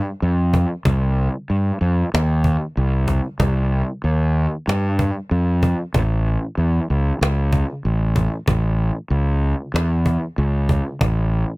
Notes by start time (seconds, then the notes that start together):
0.22 F2
0.54 cajon bass
0.85 C2, cajon bass
1.50 G2
1.81 F2
2.14 D#2, cajon slap
2.44 cajon bass
2.77 C2
3.08 cajon bass
3.39 C2, cajon bass
4.04 D#2
4.68 G2, cajon slap
4.99 cajon bass
5.31 F2
5.63 cajon bass
5.94 A1, cajon bass
6.57 E2
6.90 C#2
7.21 C#2, cajon slap
7.53 cajon bass, cajon slap
7.85 A1
8.16 cajon bass
8.48 A1, cajon bass
9.10 C#2
9.74 E2, cajon slap
10.06 cajon bass
10.38 C#2
10.69 cajon bass
11.01 A1, cajon bass